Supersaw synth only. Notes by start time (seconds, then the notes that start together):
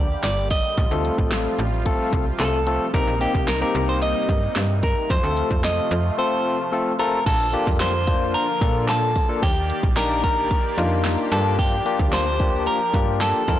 Already playing: D3 G3 A#3 G4
0.77 C3 F3 F4
2.94 G3 A#3 D#4
5.10 F3 A3 F4
7.26 D3 F3 A#3 F4
9.43 D#3 G4 D5
11.32 F3 D4
13.48 D#3 A#3 C4 F4